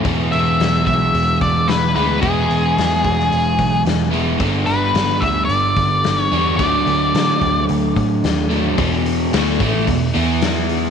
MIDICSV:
0, 0, Header, 1, 5, 480
1, 0, Start_track
1, 0, Tempo, 545951
1, 33, Time_signature, 4, 2, 24, 8
1, 9584, End_track
2, 0, Start_track
2, 0, Title_t, "Lead electric guitar"
2, 0, Program_c, 0, 29
2, 281, Note_on_c, 0, 76, 93
2, 748, Note_off_c, 0, 76, 0
2, 759, Note_on_c, 0, 76, 94
2, 1201, Note_off_c, 0, 76, 0
2, 1247, Note_on_c, 0, 74, 84
2, 1475, Note_on_c, 0, 71, 87
2, 1486, Note_off_c, 0, 74, 0
2, 1713, Note_off_c, 0, 71, 0
2, 1723, Note_on_c, 0, 71, 84
2, 1944, Note_off_c, 0, 71, 0
2, 1947, Note_on_c, 0, 68, 71
2, 3352, Note_off_c, 0, 68, 0
2, 4098, Note_on_c, 0, 71, 84
2, 4576, Note_on_c, 0, 76, 92
2, 4598, Note_off_c, 0, 71, 0
2, 4787, Note_off_c, 0, 76, 0
2, 4790, Note_on_c, 0, 74, 85
2, 5459, Note_off_c, 0, 74, 0
2, 5459, Note_on_c, 0, 73, 85
2, 5762, Note_off_c, 0, 73, 0
2, 5772, Note_on_c, 0, 74, 79
2, 6707, Note_off_c, 0, 74, 0
2, 9584, End_track
3, 0, Start_track
3, 0, Title_t, "Overdriven electric guitar"
3, 0, Program_c, 1, 29
3, 28, Note_on_c, 1, 52, 78
3, 40, Note_on_c, 1, 56, 77
3, 44, Note_on_c, 1, 59, 83
3, 53, Note_on_c, 1, 64, 82
3, 1694, Note_off_c, 1, 52, 0
3, 1699, Note_off_c, 1, 56, 0
3, 1701, Note_off_c, 1, 64, 0
3, 1711, Note_on_c, 1, 64, 68
3, 1714, Note_off_c, 1, 59, 0
3, 1717, Note_on_c, 1, 59, 68
3, 1725, Note_on_c, 1, 56, 66
3, 1734, Note_on_c, 1, 52, 61
3, 1936, Note_off_c, 1, 64, 0
3, 1941, Note_off_c, 1, 52, 0
3, 1943, Note_off_c, 1, 56, 0
3, 1952, Note_on_c, 1, 52, 77
3, 1961, Note_off_c, 1, 59, 0
3, 1963, Note_on_c, 1, 56, 72
3, 1964, Note_on_c, 1, 59, 82
3, 1972, Note_on_c, 1, 64, 82
3, 3605, Note_off_c, 1, 64, 0
3, 3615, Note_off_c, 1, 52, 0
3, 3616, Note_on_c, 1, 64, 85
3, 3618, Note_off_c, 1, 59, 0
3, 3619, Note_off_c, 1, 56, 0
3, 3628, Note_on_c, 1, 59, 75
3, 3630, Note_on_c, 1, 56, 66
3, 3642, Note_on_c, 1, 52, 64
3, 3848, Note_off_c, 1, 64, 0
3, 3850, Note_on_c, 1, 43, 78
3, 3851, Note_off_c, 1, 52, 0
3, 3854, Note_off_c, 1, 59, 0
3, 3855, Note_off_c, 1, 56, 0
3, 3855, Note_on_c, 1, 50, 80
3, 3861, Note_on_c, 1, 55, 74
3, 3869, Note_on_c, 1, 59, 80
3, 3876, Note_on_c, 1, 62, 91
3, 5526, Note_off_c, 1, 43, 0
3, 5528, Note_off_c, 1, 50, 0
3, 5531, Note_off_c, 1, 55, 0
3, 5536, Note_off_c, 1, 59, 0
3, 5539, Note_off_c, 1, 62, 0
3, 5553, Note_on_c, 1, 62, 74
3, 5563, Note_on_c, 1, 59, 70
3, 5566, Note_on_c, 1, 55, 64
3, 5573, Note_on_c, 1, 50, 58
3, 5578, Note_on_c, 1, 43, 55
3, 5777, Note_off_c, 1, 62, 0
3, 5782, Note_off_c, 1, 50, 0
3, 5782, Note_off_c, 1, 59, 0
3, 5784, Note_off_c, 1, 55, 0
3, 5790, Note_off_c, 1, 43, 0
3, 5793, Note_on_c, 1, 50, 81
3, 5799, Note_on_c, 1, 54, 85
3, 5810, Note_on_c, 1, 57, 81
3, 5814, Note_on_c, 1, 62, 80
3, 7455, Note_off_c, 1, 62, 0
3, 7459, Note_off_c, 1, 50, 0
3, 7461, Note_off_c, 1, 57, 0
3, 7462, Note_off_c, 1, 54, 0
3, 7466, Note_on_c, 1, 62, 70
3, 7471, Note_on_c, 1, 57, 64
3, 7481, Note_on_c, 1, 54, 64
3, 7491, Note_on_c, 1, 50, 59
3, 7695, Note_off_c, 1, 62, 0
3, 7698, Note_off_c, 1, 57, 0
3, 7703, Note_off_c, 1, 54, 0
3, 7707, Note_off_c, 1, 50, 0
3, 7715, Note_on_c, 1, 40, 78
3, 7717, Note_on_c, 1, 47, 84
3, 7724, Note_on_c, 1, 52, 100
3, 8187, Note_off_c, 1, 40, 0
3, 8188, Note_off_c, 1, 47, 0
3, 8192, Note_off_c, 1, 52, 0
3, 8208, Note_on_c, 1, 50, 96
3, 8212, Note_on_c, 1, 57, 105
3, 8213, Note_on_c, 1, 62, 101
3, 8434, Note_off_c, 1, 50, 0
3, 8435, Note_off_c, 1, 57, 0
3, 8436, Note_off_c, 1, 62, 0
3, 8453, Note_on_c, 1, 52, 84
3, 8454, Note_on_c, 1, 45, 73
3, 8456, Note_on_c, 1, 57, 94
3, 8676, Note_off_c, 1, 52, 0
3, 8677, Note_off_c, 1, 45, 0
3, 8677, Note_on_c, 1, 40, 68
3, 8678, Note_off_c, 1, 57, 0
3, 8681, Note_on_c, 1, 47, 88
3, 8868, Note_off_c, 1, 40, 0
3, 8870, Note_off_c, 1, 47, 0
3, 8917, Note_on_c, 1, 52, 81
3, 8920, Note_on_c, 1, 59, 97
3, 8923, Note_on_c, 1, 64, 102
3, 9584, Note_off_c, 1, 52, 0
3, 9584, Note_off_c, 1, 59, 0
3, 9584, Note_off_c, 1, 64, 0
3, 9584, End_track
4, 0, Start_track
4, 0, Title_t, "Picked electric bass"
4, 0, Program_c, 2, 34
4, 48, Note_on_c, 2, 28, 88
4, 263, Note_off_c, 2, 28, 0
4, 294, Note_on_c, 2, 28, 79
4, 505, Note_off_c, 2, 28, 0
4, 528, Note_on_c, 2, 28, 80
4, 742, Note_off_c, 2, 28, 0
4, 765, Note_on_c, 2, 35, 82
4, 980, Note_off_c, 2, 35, 0
4, 997, Note_on_c, 2, 28, 83
4, 1216, Note_off_c, 2, 28, 0
4, 1244, Note_on_c, 2, 28, 88
4, 1460, Note_off_c, 2, 28, 0
4, 1479, Note_on_c, 2, 28, 85
4, 1697, Note_off_c, 2, 28, 0
4, 1718, Note_on_c, 2, 38, 84
4, 1936, Note_off_c, 2, 38, 0
4, 1959, Note_on_c, 2, 28, 92
4, 2176, Note_off_c, 2, 28, 0
4, 2196, Note_on_c, 2, 28, 77
4, 2414, Note_off_c, 2, 28, 0
4, 2438, Note_on_c, 2, 40, 88
4, 2656, Note_off_c, 2, 40, 0
4, 2680, Note_on_c, 2, 28, 74
4, 2897, Note_off_c, 2, 28, 0
4, 2918, Note_on_c, 2, 28, 78
4, 3135, Note_off_c, 2, 28, 0
4, 3163, Note_on_c, 2, 35, 92
4, 3378, Note_off_c, 2, 35, 0
4, 3387, Note_on_c, 2, 28, 90
4, 3833, Note_off_c, 2, 28, 0
4, 3871, Note_on_c, 2, 31, 99
4, 4092, Note_off_c, 2, 31, 0
4, 4108, Note_on_c, 2, 31, 76
4, 4330, Note_off_c, 2, 31, 0
4, 4346, Note_on_c, 2, 31, 83
4, 4569, Note_off_c, 2, 31, 0
4, 4593, Note_on_c, 2, 38, 85
4, 4813, Note_off_c, 2, 38, 0
4, 4821, Note_on_c, 2, 31, 71
4, 5047, Note_off_c, 2, 31, 0
4, 5070, Note_on_c, 2, 31, 83
4, 5291, Note_off_c, 2, 31, 0
4, 5319, Note_on_c, 2, 31, 76
4, 5536, Note_off_c, 2, 31, 0
4, 5556, Note_on_c, 2, 40, 80
4, 5800, Note_off_c, 2, 40, 0
4, 5800, Note_on_c, 2, 38, 90
4, 6017, Note_off_c, 2, 38, 0
4, 6035, Note_on_c, 2, 38, 71
4, 6255, Note_off_c, 2, 38, 0
4, 6279, Note_on_c, 2, 50, 75
4, 6497, Note_off_c, 2, 50, 0
4, 6519, Note_on_c, 2, 38, 86
4, 6737, Note_off_c, 2, 38, 0
4, 6767, Note_on_c, 2, 38, 83
4, 6982, Note_off_c, 2, 38, 0
4, 7003, Note_on_c, 2, 45, 95
4, 7220, Note_off_c, 2, 45, 0
4, 7243, Note_on_c, 2, 39, 84
4, 7683, Note_off_c, 2, 39, 0
4, 7727, Note_on_c, 2, 28, 94
4, 8167, Note_off_c, 2, 28, 0
4, 8208, Note_on_c, 2, 38, 94
4, 8424, Note_off_c, 2, 38, 0
4, 8444, Note_on_c, 2, 33, 90
4, 8663, Note_off_c, 2, 33, 0
4, 8688, Note_on_c, 2, 28, 81
4, 8905, Note_off_c, 2, 28, 0
4, 8930, Note_on_c, 2, 40, 108
4, 9584, Note_off_c, 2, 40, 0
4, 9584, End_track
5, 0, Start_track
5, 0, Title_t, "Drums"
5, 44, Note_on_c, 9, 36, 107
5, 46, Note_on_c, 9, 46, 61
5, 132, Note_off_c, 9, 36, 0
5, 134, Note_off_c, 9, 46, 0
5, 286, Note_on_c, 9, 46, 49
5, 374, Note_off_c, 9, 46, 0
5, 529, Note_on_c, 9, 46, 61
5, 539, Note_on_c, 9, 38, 91
5, 617, Note_off_c, 9, 46, 0
5, 627, Note_off_c, 9, 38, 0
5, 764, Note_on_c, 9, 36, 73
5, 768, Note_on_c, 9, 46, 49
5, 852, Note_off_c, 9, 36, 0
5, 856, Note_off_c, 9, 46, 0
5, 1006, Note_on_c, 9, 46, 57
5, 1094, Note_off_c, 9, 46, 0
5, 1242, Note_on_c, 9, 36, 78
5, 1244, Note_on_c, 9, 46, 47
5, 1330, Note_off_c, 9, 36, 0
5, 1332, Note_off_c, 9, 46, 0
5, 1480, Note_on_c, 9, 46, 54
5, 1490, Note_on_c, 9, 38, 84
5, 1568, Note_off_c, 9, 46, 0
5, 1578, Note_off_c, 9, 38, 0
5, 1722, Note_on_c, 9, 46, 46
5, 1810, Note_off_c, 9, 46, 0
5, 1956, Note_on_c, 9, 46, 57
5, 1958, Note_on_c, 9, 36, 106
5, 2044, Note_off_c, 9, 46, 0
5, 2046, Note_off_c, 9, 36, 0
5, 2202, Note_on_c, 9, 46, 48
5, 2290, Note_off_c, 9, 46, 0
5, 2446, Note_on_c, 9, 46, 70
5, 2456, Note_on_c, 9, 38, 93
5, 2534, Note_off_c, 9, 46, 0
5, 2544, Note_off_c, 9, 38, 0
5, 2676, Note_on_c, 9, 46, 45
5, 2677, Note_on_c, 9, 36, 80
5, 2764, Note_off_c, 9, 46, 0
5, 2765, Note_off_c, 9, 36, 0
5, 2812, Note_on_c, 9, 38, 32
5, 2900, Note_off_c, 9, 38, 0
5, 2922, Note_on_c, 9, 46, 54
5, 3010, Note_off_c, 9, 46, 0
5, 3154, Note_on_c, 9, 36, 74
5, 3156, Note_on_c, 9, 46, 52
5, 3242, Note_off_c, 9, 36, 0
5, 3244, Note_off_c, 9, 46, 0
5, 3396, Note_on_c, 9, 46, 59
5, 3406, Note_on_c, 9, 38, 89
5, 3484, Note_off_c, 9, 46, 0
5, 3494, Note_off_c, 9, 38, 0
5, 3635, Note_on_c, 9, 46, 45
5, 3723, Note_off_c, 9, 46, 0
5, 3866, Note_on_c, 9, 46, 63
5, 3868, Note_on_c, 9, 36, 104
5, 3954, Note_off_c, 9, 46, 0
5, 3956, Note_off_c, 9, 36, 0
5, 4103, Note_on_c, 9, 46, 48
5, 4191, Note_off_c, 9, 46, 0
5, 4349, Note_on_c, 9, 46, 63
5, 4359, Note_on_c, 9, 38, 105
5, 4437, Note_off_c, 9, 46, 0
5, 4447, Note_off_c, 9, 38, 0
5, 4586, Note_on_c, 9, 46, 49
5, 4588, Note_on_c, 9, 36, 75
5, 4674, Note_off_c, 9, 46, 0
5, 4676, Note_off_c, 9, 36, 0
5, 4829, Note_on_c, 9, 46, 55
5, 4917, Note_off_c, 9, 46, 0
5, 5067, Note_on_c, 9, 46, 48
5, 5069, Note_on_c, 9, 36, 82
5, 5155, Note_off_c, 9, 46, 0
5, 5157, Note_off_c, 9, 36, 0
5, 5309, Note_on_c, 9, 46, 56
5, 5319, Note_on_c, 9, 38, 92
5, 5397, Note_off_c, 9, 46, 0
5, 5407, Note_off_c, 9, 38, 0
5, 5562, Note_on_c, 9, 46, 42
5, 5650, Note_off_c, 9, 46, 0
5, 5796, Note_on_c, 9, 36, 99
5, 5796, Note_on_c, 9, 46, 58
5, 5884, Note_off_c, 9, 36, 0
5, 5884, Note_off_c, 9, 46, 0
5, 6038, Note_on_c, 9, 46, 47
5, 6126, Note_off_c, 9, 46, 0
5, 6283, Note_on_c, 9, 46, 60
5, 6293, Note_on_c, 9, 38, 98
5, 6371, Note_off_c, 9, 46, 0
5, 6381, Note_off_c, 9, 38, 0
5, 6519, Note_on_c, 9, 36, 73
5, 6520, Note_on_c, 9, 46, 48
5, 6607, Note_off_c, 9, 36, 0
5, 6608, Note_off_c, 9, 46, 0
5, 6760, Note_on_c, 9, 46, 59
5, 6848, Note_off_c, 9, 46, 0
5, 7002, Note_on_c, 9, 36, 75
5, 7009, Note_on_c, 9, 46, 48
5, 7090, Note_off_c, 9, 36, 0
5, 7097, Note_off_c, 9, 46, 0
5, 7243, Note_on_c, 9, 46, 57
5, 7253, Note_on_c, 9, 38, 90
5, 7331, Note_off_c, 9, 46, 0
5, 7341, Note_off_c, 9, 38, 0
5, 7481, Note_on_c, 9, 46, 52
5, 7569, Note_off_c, 9, 46, 0
5, 7721, Note_on_c, 9, 36, 108
5, 7721, Note_on_c, 9, 46, 81
5, 7809, Note_off_c, 9, 36, 0
5, 7809, Note_off_c, 9, 46, 0
5, 7965, Note_on_c, 9, 46, 60
5, 8053, Note_off_c, 9, 46, 0
5, 8203, Note_on_c, 9, 46, 79
5, 8212, Note_on_c, 9, 38, 112
5, 8291, Note_off_c, 9, 46, 0
5, 8300, Note_off_c, 9, 38, 0
5, 8442, Note_on_c, 9, 36, 102
5, 8445, Note_on_c, 9, 46, 59
5, 8530, Note_off_c, 9, 36, 0
5, 8533, Note_off_c, 9, 46, 0
5, 8682, Note_on_c, 9, 36, 80
5, 8687, Note_on_c, 9, 46, 78
5, 8770, Note_off_c, 9, 36, 0
5, 8775, Note_off_c, 9, 46, 0
5, 8924, Note_on_c, 9, 46, 57
5, 9012, Note_off_c, 9, 46, 0
5, 9156, Note_on_c, 9, 46, 69
5, 9166, Note_on_c, 9, 38, 108
5, 9244, Note_off_c, 9, 46, 0
5, 9254, Note_off_c, 9, 38, 0
5, 9399, Note_on_c, 9, 46, 57
5, 9487, Note_off_c, 9, 46, 0
5, 9584, End_track
0, 0, End_of_file